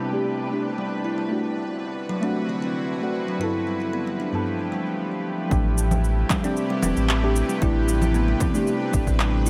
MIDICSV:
0, 0, Header, 1, 7, 480
1, 0, Start_track
1, 0, Key_signature, 0, "minor"
1, 0, Tempo, 526316
1, 1188, Time_signature, 4, 2, 24, 8
1, 8663, End_track
2, 0, Start_track
2, 0, Title_t, "Synth texture"
2, 0, Program_c, 0, 99
2, 0, Note_on_c, 0, 62, 77
2, 0, Note_on_c, 0, 74, 82
2, 4549, Note_off_c, 0, 74, 0
2, 4550, Note_off_c, 0, 62, 0
2, 8663, End_track
3, 0, Start_track
3, 0, Title_t, "Synth drone"
3, 0, Program_c, 1, 95
3, 0, Note_on_c, 1, 48, 74
3, 0, Note_on_c, 1, 57, 66
3, 0, Note_on_c, 1, 62, 68
3, 0, Note_on_c, 1, 67, 83
3, 0, Note_on_c, 1, 71, 68
3, 1150, Note_off_c, 1, 48, 0
3, 1150, Note_off_c, 1, 57, 0
3, 1150, Note_off_c, 1, 67, 0
3, 1168, Note_off_c, 1, 62, 0
3, 1187, Note_on_c, 1, 50, 76
3, 1190, Note_on_c, 1, 60, 70
3, 1191, Note_on_c, 1, 64, 70
3, 1191, Note_on_c, 1, 66, 85
3, 3088, Note_off_c, 1, 50, 0
3, 3090, Note_off_c, 1, 60, 0
3, 3091, Note_off_c, 1, 66, 0
3, 3105, Note_on_c, 1, 57, 70
3, 3105, Note_on_c, 1, 67, 85
3, 3106, Note_on_c, 1, 53, 76
3, 4991, Note_off_c, 1, 71, 0
3, 4993, Note_off_c, 1, 64, 0
3, 5007, Note_off_c, 1, 67, 0
3, 5008, Note_off_c, 1, 53, 0
3, 5008, Note_off_c, 1, 57, 0
3, 5026, Note_on_c, 1, 64, 69
3, 5027, Note_on_c, 1, 48, 79
3, 5027, Note_on_c, 1, 57, 74
3, 5028, Note_on_c, 1, 67, 93
3, 5028, Note_on_c, 1, 71, 75
3, 6928, Note_off_c, 1, 64, 0
3, 6951, Note_on_c, 1, 62, 73
3, 8663, Note_off_c, 1, 48, 0
3, 8663, Note_off_c, 1, 57, 0
3, 8663, Note_off_c, 1, 62, 0
3, 8663, Note_off_c, 1, 67, 0
3, 8663, Note_off_c, 1, 71, 0
3, 8663, End_track
4, 0, Start_track
4, 0, Title_t, "Synth stab"
4, 0, Program_c, 2, 62
4, 0, Note_on_c, 2, 67, 92
4, 92, Note_off_c, 2, 67, 0
4, 108, Note_on_c, 2, 57, 87
4, 116, Note_on_c, 2, 62, 78
4, 125, Note_on_c, 2, 67, 97
4, 438, Note_off_c, 2, 57, 0
4, 442, Note_off_c, 2, 62, 0
4, 447, Note_off_c, 2, 67, 0
4, 449, Note_on_c, 2, 57, 87
4, 468, Note_on_c, 2, 62, 75
4, 484, Note_on_c, 2, 67, 98
4, 1151, Note_off_c, 2, 57, 0
4, 1160, Note_off_c, 2, 62, 0
4, 1168, Note_off_c, 2, 67, 0
4, 1171, Note_on_c, 2, 57, 73
4, 1192, Note_on_c, 2, 62, 69
4, 1210, Note_on_c, 2, 66, 79
4, 1995, Note_off_c, 2, 57, 0
4, 2005, Note_off_c, 2, 62, 0
4, 2013, Note_on_c, 2, 57, 91
4, 2014, Note_off_c, 2, 66, 0
4, 2032, Note_on_c, 2, 62, 88
4, 2051, Note_on_c, 2, 66, 105
4, 2713, Note_off_c, 2, 57, 0
4, 2723, Note_off_c, 2, 62, 0
4, 2732, Note_off_c, 2, 66, 0
4, 2746, Note_on_c, 2, 57, 77
4, 2757, Note_on_c, 2, 62, 69
4, 2766, Note_on_c, 2, 66, 82
4, 3077, Note_off_c, 2, 57, 0
4, 3082, Note_off_c, 2, 62, 0
4, 3087, Note_off_c, 2, 66, 0
4, 3092, Note_on_c, 2, 43, 85
4, 3104, Note_on_c, 2, 59, 84
4, 3115, Note_on_c, 2, 64, 80
4, 3128, Note_on_c, 2, 69, 93
4, 3916, Note_off_c, 2, 43, 0
4, 3921, Note_off_c, 2, 59, 0
4, 3927, Note_off_c, 2, 64, 0
4, 3933, Note_off_c, 2, 69, 0
4, 3945, Note_on_c, 2, 43, 95
4, 3951, Note_on_c, 2, 59, 82
4, 3957, Note_on_c, 2, 64, 80
4, 3963, Note_on_c, 2, 69, 96
4, 4276, Note_off_c, 2, 43, 0
4, 4279, Note_off_c, 2, 59, 0
4, 4282, Note_off_c, 2, 64, 0
4, 4286, Note_off_c, 2, 69, 0
4, 5010, Note_on_c, 2, 57, 78
4, 5028, Note_on_c, 2, 62, 68
4, 5045, Note_on_c, 2, 67, 86
4, 5834, Note_off_c, 2, 57, 0
4, 5843, Note_off_c, 2, 62, 0
4, 5852, Note_off_c, 2, 67, 0
4, 5853, Note_on_c, 2, 57, 94
4, 5869, Note_on_c, 2, 62, 94
4, 5887, Note_on_c, 2, 67, 110
4, 6553, Note_off_c, 2, 57, 0
4, 6561, Note_off_c, 2, 62, 0
4, 6570, Note_off_c, 2, 67, 0
4, 6583, Note_on_c, 2, 57, 78
4, 6592, Note_on_c, 2, 62, 71
4, 6602, Note_on_c, 2, 67, 89
4, 6916, Note_off_c, 2, 57, 0
4, 6920, Note_off_c, 2, 62, 0
4, 6925, Note_off_c, 2, 67, 0
4, 6928, Note_on_c, 2, 57, 92
4, 6947, Note_on_c, 2, 62, 81
4, 6965, Note_on_c, 2, 67, 105
4, 7753, Note_off_c, 2, 57, 0
4, 7763, Note_off_c, 2, 62, 0
4, 7772, Note_off_c, 2, 67, 0
4, 7785, Note_on_c, 2, 57, 94
4, 7792, Note_on_c, 2, 62, 86
4, 7802, Note_on_c, 2, 67, 106
4, 8116, Note_off_c, 2, 57, 0
4, 8120, Note_off_c, 2, 62, 0
4, 8125, Note_off_c, 2, 67, 0
4, 8131, Note_on_c, 2, 57, 92
4, 8148, Note_on_c, 2, 62, 86
4, 8166, Note_on_c, 2, 67, 101
4, 8663, Note_off_c, 2, 57, 0
4, 8663, Note_off_c, 2, 62, 0
4, 8663, Note_off_c, 2, 67, 0
4, 8663, End_track
5, 0, Start_track
5, 0, Title_t, "Kalimba"
5, 0, Program_c, 3, 108
5, 0, Note_on_c, 3, 60, 64
5, 109, Note_off_c, 3, 60, 0
5, 714, Note_on_c, 3, 55, 74
5, 830, Note_off_c, 3, 55, 0
5, 953, Note_on_c, 3, 64, 67
5, 1063, Note_off_c, 3, 64, 0
5, 1076, Note_on_c, 3, 55, 68
5, 1189, Note_off_c, 3, 55, 0
5, 1910, Note_on_c, 3, 54, 90
5, 2028, Note_off_c, 3, 54, 0
5, 2032, Note_on_c, 3, 60, 87
5, 2098, Note_off_c, 3, 60, 0
5, 2275, Note_on_c, 3, 54, 66
5, 2378, Note_off_c, 3, 54, 0
5, 2393, Note_on_c, 3, 60, 70
5, 2510, Note_off_c, 3, 60, 0
5, 2995, Note_on_c, 3, 54, 74
5, 3103, Note_off_c, 3, 54, 0
5, 3108, Note_on_c, 3, 64, 88
5, 3337, Note_off_c, 3, 64, 0
5, 3348, Note_on_c, 3, 55, 64
5, 3576, Note_off_c, 3, 55, 0
5, 3588, Note_on_c, 3, 59, 67
5, 3707, Note_off_c, 3, 59, 0
5, 3716, Note_on_c, 3, 55, 69
5, 3823, Note_off_c, 3, 55, 0
5, 3829, Note_on_c, 3, 62, 63
5, 3948, Note_off_c, 3, 62, 0
5, 4305, Note_on_c, 3, 55, 71
5, 4426, Note_off_c, 3, 55, 0
5, 5747, Note_on_c, 3, 55, 99
5, 5866, Note_off_c, 3, 55, 0
5, 5875, Note_on_c, 3, 60, 93
5, 5940, Note_off_c, 3, 60, 0
5, 6113, Note_on_c, 3, 55, 72
5, 6216, Note_off_c, 3, 55, 0
5, 6227, Note_on_c, 3, 60, 69
5, 6347, Note_off_c, 3, 60, 0
5, 6835, Note_on_c, 3, 55, 78
5, 6943, Note_off_c, 3, 55, 0
5, 6948, Note_on_c, 3, 64, 96
5, 7176, Note_off_c, 3, 64, 0
5, 7188, Note_on_c, 3, 55, 77
5, 7417, Note_off_c, 3, 55, 0
5, 7428, Note_on_c, 3, 59, 83
5, 7547, Note_off_c, 3, 59, 0
5, 7555, Note_on_c, 3, 55, 73
5, 7663, Note_off_c, 3, 55, 0
5, 7669, Note_on_c, 3, 60, 76
5, 7788, Note_off_c, 3, 60, 0
5, 8390, Note_on_c, 3, 55, 79
5, 8508, Note_off_c, 3, 55, 0
5, 8631, Note_on_c, 3, 64, 76
5, 8663, Note_off_c, 3, 64, 0
5, 8663, End_track
6, 0, Start_track
6, 0, Title_t, "Sub bass"
6, 0, Program_c, 4, 38
6, 5027, Note_on_c, 4, 33, 92
6, 5694, Note_off_c, 4, 33, 0
6, 6230, Note_on_c, 4, 28, 100
6, 6318, Note_off_c, 4, 28, 0
6, 6357, Note_on_c, 4, 33, 74
6, 6776, Note_off_c, 4, 33, 0
6, 6948, Note_on_c, 4, 33, 97
6, 7614, Note_off_c, 4, 33, 0
6, 8149, Note_on_c, 4, 33, 95
6, 8663, Note_off_c, 4, 33, 0
6, 8663, End_track
7, 0, Start_track
7, 0, Title_t, "Drums"
7, 119, Note_on_c, 9, 82, 42
7, 210, Note_off_c, 9, 82, 0
7, 235, Note_on_c, 9, 82, 29
7, 326, Note_off_c, 9, 82, 0
7, 473, Note_on_c, 9, 82, 72
7, 564, Note_off_c, 9, 82, 0
7, 600, Note_on_c, 9, 82, 38
7, 691, Note_off_c, 9, 82, 0
7, 714, Note_on_c, 9, 82, 30
7, 806, Note_off_c, 9, 82, 0
7, 955, Note_on_c, 9, 82, 66
7, 1046, Note_off_c, 9, 82, 0
7, 1078, Note_on_c, 9, 82, 42
7, 1169, Note_off_c, 9, 82, 0
7, 1194, Note_on_c, 9, 82, 30
7, 1285, Note_off_c, 9, 82, 0
7, 1431, Note_on_c, 9, 82, 73
7, 1522, Note_off_c, 9, 82, 0
7, 1556, Note_on_c, 9, 82, 42
7, 1647, Note_off_c, 9, 82, 0
7, 1670, Note_on_c, 9, 82, 30
7, 1761, Note_off_c, 9, 82, 0
7, 1909, Note_on_c, 9, 82, 75
7, 2000, Note_off_c, 9, 82, 0
7, 2035, Note_on_c, 9, 82, 43
7, 2126, Note_off_c, 9, 82, 0
7, 2152, Note_on_c, 9, 82, 31
7, 2243, Note_off_c, 9, 82, 0
7, 2390, Note_on_c, 9, 82, 75
7, 2482, Note_off_c, 9, 82, 0
7, 2516, Note_on_c, 9, 82, 42
7, 2607, Note_off_c, 9, 82, 0
7, 2629, Note_on_c, 9, 82, 29
7, 2720, Note_off_c, 9, 82, 0
7, 2869, Note_on_c, 9, 82, 74
7, 2961, Note_off_c, 9, 82, 0
7, 2994, Note_on_c, 9, 82, 43
7, 3086, Note_off_c, 9, 82, 0
7, 3109, Note_on_c, 9, 82, 29
7, 3200, Note_off_c, 9, 82, 0
7, 3351, Note_on_c, 9, 82, 74
7, 3443, Note_off_c, 9, 82, 0
7, 3473, Note_on_c, 9, 82, 42
7, 3565, Note_off_c, 9, 82, 0
7, 3589, Note_on_c, 9, 82, 31
7, 3681, Note_off_c, 9, 82, 0
7, 3830, Note_on_c, 9, 82, 67
7, 3921, Note_off_c, 9, 82, 0
7, 3954, Note_on_c, 9, 82, 43
7, 4045, Note_off_c, 9, 82, 0
7, 4069, Note_on_c, 9, 82, 30
7, 4160, Note_off_c, 9, 82, 0
7, 4311, Note_on_c, 9, 82, 68
7, 4402, Note_off_c, 9, 82, 0
7, 4436, Note_on_c, 9, 82, 42
7, 4527, Note_off_c, 9, 82, 0
7, 5028, Note_on_c, 9, 36, 114
7, 5033, Note_on_c, 9, 82, 31
7, 5119, Note_off_c, 9, 36, 0
7, 5124, Note_off_c, 9, 82, 0
7, 5271, Note_on_c, 9, 82, 86
7, 5363, Note_off_c, 9, 82, 0
7, 5392, Note_on_c, 9, 64, 61
7, 5395, Note_on_c, 9, 82, 43
7, 5483, Note_off_c, 9, 64, 0
7, 5486, Note_off_c, 9, 82, 0
7, 5511, Note_on_c, 9, 82, 32
7, 5602, Note_off_c, 9, 82, 0
7, 5747, Note_on_c, 9, 39, 75
7, 5747, Note_on_c, 9, 64, 84
7, 5748, Note_on_c, 9, 36, 106
7, 5750, Note_on_c, 9, 82, 78
7, 5838, Note_off_c, 9, 39, 0
7, 5838, Note_off_c, 9, 64, 0
7, 5839, Note_off_c, 9, 36, 0
7, 5841, Note_off_c, 9, 82, 0
7, 5876, Note_on_c, 9, 82, 45
7, 5967, Note_off_c, 9, 82, 0
7, 5990, Note_on_c, 9, 82, 33
7, 6081, Note_off_c, 9, 82, 0
7, 6225, Note_on_c, 9, 64, 78
7, 6228, Note_on_c, 9, 82, 79
7, 6316, Note_off_c, 9, 64, 0
7, 6319, Note_off_c, 9, 82, 0
7, 6355, Note_on_c, 9, 82, 47
7, 6446, Note_off_c, 9, 82, 0
7, 6468, Note_on_c, 9, 39, 78
7, 6472, Note_on_c, 9, 82, 32
7, 6559, Note_off_c, 9, 39, 0
7, 6563, Note_off_c, 9, 82, 0
7, 6711, Note_on_c, 9, 82, 75
7, 6802, Note_off_c, 9, 82, 0
7, 6836, Note_on_c, 9, 82, 45
7, 6927, Note_off_c, 9, 82, 0
7, 6949, Note_on_c, 9, 36, 117
7, 6951, Note_on_c, 9, 82, 35
7, 7040, Note_off_c, 9, 36, 0
7, 7042, Note_off_c, 9, 82, 0
7, 7191, Note_on_c, 9, 82, 85
7, 7282, Note_off_c, 9, 82, 0
7, 7313, Note_on_c, 9, 64, 61
7, 7316, Note_on_c, 9, 82, 46
7, 7404, Note_off_c, 9, 64, 0
7, 7407, Note_off_c, 9, 82, 0
7, 7430, Note_on_c, 9, 82, 32
7, 7521, Note_off_c, 9, 82, 0
7, 7664, Note_on_c, 9, 64, 75
7, 7668, Note_on_c, 9, 82, 78
7, 7669, Note_on_c, 9, 36, 105
7, 7756, Note_off_c, 9, 64, 0
7, 7759, Note_off_c, 9, 82, 0
7, 7760, Note_off_c, 9, 36, 0
7, 7794, Note_on_c, 9, 82, 47
7, 7885, Note_off_c, 9, 82, 0
7, 7909, Note_on_c, 9, 82, 34
7, 8000, Note_off_c, 9, 82, 0
7, 8148, Note_on_c, 9, 36, 101
7, 8150, Note_on_c, 9, 82, 80
7, 8240, Note_off_c, 9, 36, 0
7, 8241, Note_off_c, 9, 82, 0
7, 8274, Note_on_c, 9, 36, 67
7, 8275, Note_on_c, 9, 82, 47
7, 8365, Note_off_c, 9, 36, 0
7, 8366, Note_off_c, 9, 82, 0
7, 8388, Note_on_c, 9, 39, 84
7, 8391, Note_on_c, 9, 82, 33
7, 8479, Note_off_c, 9, 39, 0
7, 8482, Note_off_c, 9, 82, 0
7, 8629, Note_on_c, 9, 82, 83
7, 8663, Note_off_c, 9, 82, 0
7, 8663, End_track
0, 0, End_of_file